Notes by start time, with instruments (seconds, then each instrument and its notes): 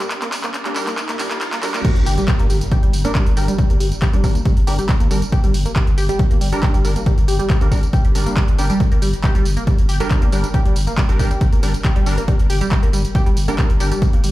Already playing: synth drone G2, riser
0.00 clap, closed hi-hat, tambourine
0.11 clap, closed hi-hat, tambourine
0.22 synth arpeggio sound A#3, clap, closed hi-hat, tambourine
0.32 clap, open hi-hat, tambourine
0.44 synth arpeggio sound A#3, clap, closed hi-hat, tambourine
0.54 clap, closed hi-hat, tambourine
0.65 synth stab G3 D4 A#4, synth arpeggio sound A#3, clap, closed hi-hat, tambourine
0.76 synth stab G3 D4 A#4, clap, open hi-hat, tambourine
0.87 synth arpeggio sound A#3, clap, closed hi-hat, tambourine
0.98 clap, closed hi-hat, tambourine
1.09 synth arpeggio sound A#3, clap, closed hi-hat, tambourine
1.19 synth stab G3 D4 A#4, clap, open hi-hat, tambourine
1.31 synth arpeggio sound A#3, clap, closed hi-hat, tambourine
1.41 clap, closed hi-hat, tambourine
1.52 synth arpeggio sound A#3, clap, closed hi-hat, tambourine
1.63 synth stab G3 D4 A#4, clap, open hi-hat, tambourine
1.74 synth arpeggio sound A#3, clap, closed hi-hat, tambourine
1.85 synth arpeggio sound G3, kick, closed hi-hat, crash, tambourine, impact
1.96 sub bass G1, closed hi-hat
2.06 sub bass G1, synth arpeggio sound G4, open hi-hat, tambourine
2.18 synth arpeggio sound G3, closed hi-hat, tambourine
2.28 kick, clap, closed hi-hat, tambourine
2.39 sub bass G1, synth arpeggio sound A#3, closed hi-hat
2.50 sub bass G1, synth arpeggio sound G3, open hi-hat, tambourine
2.61 closed hi-hat, tambourine
2.72 synth arpeggio sound G4, kick, closed hi-hat
2.83 sub bass G1, synth arpeggio sound G3, closed hi-hat
2.93 sub bass G1, open hi-hat, tambourine
3.05 synth stab G3 D4 A#4, synth arpeggio sound A#3, closed hi-hat, tambourine
3.15 synth arpeggio sound G3, kick, clap, closed hi-hat, tambourine
3.26 sub bass G1, closed hi-hat
3.37 sub bass G1, synth stab G3 D4 A#4, synth arpeggio sound G4, open hi-hat, tambourine
3.48 synth arpeggio sound G3, closed hi-hat, tambourine
3.59 kick, closed hi-hat
3.70 sub bass G1, synth arpeggio sound A#3, closed hi-hat
3.80 sub bass G1, synth arpeggio sound G3, open hi-hat, tambourine
3.92 closed hi-hat, tambourine
4.02 synth arpeggio sound G4, kick, clap, closed hi-hat, tambourine
4.13 sub bass G1, synth arpeggio sound G3, synth stab G3 D4 A#4, closed hi-hat
4.24 sub bass G1, synth stab G3 D4 A#4, kick, open hi-hat, tambourine
4.35 synth arpeggio sound A#3, closed hi-hat, tambourine
4.45 synth arpeggio sound G3, kick, closed hi-hat, tambourine
4.57 sub bass G1, closed hi-hat
4.67 sub bass G1, synth stab G3 D4 A#4, synth arpeggio sound G4, open hi-hat, tambourine
4.79 synth arpeggio sound G3, closed hi-hat, tambourine
4.89 kick, clap, closed hi-hat, tambourine
5.00 sub bass G1, synth arpeggio sound A#3, closed hi-hat
5.11 sub bass G1, synth arpeggio sound G3, synth stab G3 D4 A#4, open hi-hat, tambourine
5.22 closed hi-hat, tambourine
5.32 synth arpeggio sound G4, kick, closed hi-hat, tambourine
5.44 sub bass G1, synth arpeggio sound G3, closed hi-hat
5.54 sub bass G1, open hi-hat, tambourine
5.65 synth arpeggio sound A#3, closed hi-hat, tambourine
5.76 synth arpeggio sound G3, kick, clap, closed hi-hat, tambourine
5.87 sub bass G1, closed hi-hat
5.98 sub bass G1, synth arpeggio sound G4, open hi-hat, tambourine
6.09 synth arpeggio sound G3, closed hi-hat, tambourine
6.19 kick, closed hi-hat
6.31 sub bass G1, synth arpeggio sound A#3, closed hi-hat
6.41 sub bass G1, synth arpeggio sound G3, open hi-hat, tambourine
6.52 synth stab G3 D4 A#4, closed hi-hat, tambourine
6.63 synth arpeggio sound G4, kick, clap, closed hi-hat, tambourine
6.74 sub bass G1, synth arpeggio sound G3, closed hi-hat
6.84 sub bass G1, synth stab G3 D4 A#4, open hi-hat, tambourine
6.96 synth arpeggio sound A#3, closed hi-hat, tambourine
7.06 synth arpeggio sound G3, kick, closed hi-hat, tambourine
7.18 sub bass G1, closed hi-hat
7.28 sub bass G1, synth arpeggio sound G4, open hi-hat, tambourine
7.39 synth arpeggio sound G3, closed hi-hat, tambourine
7.50 kick, clap, closed hi-hat, tambourine
7.61 sub bass G1, synth stab G3 D4 A#4, synth arpeggio sound A#3, closed hi-hat
7.71 sub bass G1, synth arpeggio sound G3, synth stab G3 D4 A#4, kick, open hi-hat, tambourine
7.83 closed hi-hat, tambourine
7.93 synth arpeggio sound G4, kick, closed hi-hat, tambourine
8.05 sub bass G1, synth arpeggio sound G3, closed hi-hat
8.15 sub bass G1, synth stab G3 D4 A#4, open hi-hat, tambourine
8.26 synth arpeggio sound A#3, closed hi-hat, tambourine
8.37 synth arpeggio sound G3, kick, clap, closed hi-hat, tambourine
8.48 sub bass G1, closed hi-hat
8.58 sub bass G1, synth stab G3 D4 A#4, synth arpeggio sound G4, open hi-hat, tambourine
8.70 synth arpeggio sound G3, closed hi-hat, tambourine
8.80 kick, closed hi-hat, tambourine
8.92 sub bass G1, synth arpeggio sound A#3, closed hi-hat
9.02 sub bass G1, synth arpeggio sound G3, open hi-hat, tambourine
9.13 closed hi-hat, tambourine
9.24 synth arpeggio sound G4, kick, clap, closed hi-hat, tambourine
9.35 sub bass G1, synth arpeggio sound G3, closed hi-hat
9.45 sub bass G1, open hi-hat, tambourine
9.57 synth arpeggio sound A#3, closed hi-hat, tambourine
9.67 synth arpeggio sound G3, kick, closed hi-hat, tambourine
9.79 sub bass G1, closed hi-hat
9.89 sub bass G1, synth arpeggio sound G4, open hi-hat, tambourine
10.00 synth arpeggio sound G3, synth stab G3 D4 A#4, closed hi-hat, tambourine
10.11 kick, clap, closed hi-hat, tambourine
10.22 sub bass G1, synth arpeggio sound A#3, closed hi-hat
10.32 sub bass G1, synth arpeggio sound G3, synth stab G3 D4 A#4, open hi-hat, tambourine
10.44 closed hi-hat, tambourine
10.54 synth arpeggio sound G4, kick, closed hi-hat
10.65 sub bass G1, synth arpeggio sound G3, closed hi-hat
10.76 sub bass G1, open hi-hat, tambourine
10.87 synth arpeggio sound A#3, closed hi-hat, tambourine
10.97 synth arpeggio sound G3, kick, clap, closed hi-hat, tambourine
11.09 sub bass G1, synth stab G3 D4 A#4, closed hi-hat
11.19 sub bass G1, synth stab G3 D4 A#4, synth arpeggio sound G4, kick, open hi-hat, tambourine
11.31 synth arpeggio sound G3, closed hi-hat, tambourine
11.41 kick, closed hi-hat, tambourine
11.52 sub bass G1, synth arpeggio sound A#3, closed hi-hat
11.63 sub bass G1, synth arpeggio sound G3, synth stab G3 D4 A#4, open hi-hat, tambourine
11.74 closed hi-hat, tambourine
11.85 synth arpeggio sound G4, kick, clap, closed hi-hat, tambourine
11.96 sub bass G1, synth arpeggio sound G3, closed hi-hat
12.06 sub bass G1, synth stab G3 D4 A#4, open hi-hat, tambourine
12.18 synth arpeggio sound A#3, closed hi-hat, tambourine
12.28 synth arpeggio sound G3, kick, closed hi-hat, tambourine
12.39 sub bass G1, closed hi-hat
12.50 sub bass G1, synth arpeggio sound G4, open hi-hat, tambourine
12.61 synth arpeggio sound G3, closed hi-hat, tambourine
12.71 kick, clap, closed hi-hat, tambourine
12.83 sub bass G1, synth arpeggio sound A#3, closed hi-hat
12.93 sub bass G1, synth arpeggio sound G3, open hi-hat, tambourine
13.05 closed hi-hat, tambourine
13.15 synth arpeggio sound G4, kick, closed hi-hat, tambourine
13.26 sub bass G1, synth arpeggio sound G3, closed hi-hat
13.37 sub bass G1, open hi-hat, tambourine
13.48 synth stab G3 D4 A#4, synth arpeggio sound A#3, closed hi-hat, tambourine
13.58 synth arpeggio sound G3, kick, clap, closed hi-hat, tambourine
13.70 sub bass G1, closed hi-hat
13.80 sub bass G1, synth stab G3 D4 A#4, synth arpeggio sound G4, open hi-hat, tambourine
13.92 synth arpeggio sound G3, closed hi-hat, tambourine
14.02 kick, closed hi-hat, tambourine
14.13 sub bass G1, synth arpeggio sound A#3, closed hi-hat
14.24 sub bass G1, synth arpeggio sound G3, open hi-hat, tambourine